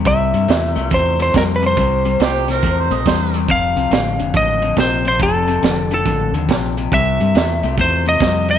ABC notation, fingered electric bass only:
X:1
M:4/4
L:1/8
Q:"Swing" 1/4=140
K:Cmix
V:1 name="Fingered electric bass" clef=bass
C,, G,, E,, C,, E,,2 F,,2 | C,,2 C,,2 E,, B,,, E,,2 | F,,, C,, A,,, F,,, A,,,2 B,,,2 | F,,,2 F,,,2 A,,, _E,, B,,,2 |
C,, G,, E,, C,, E,,2 F,,2 |]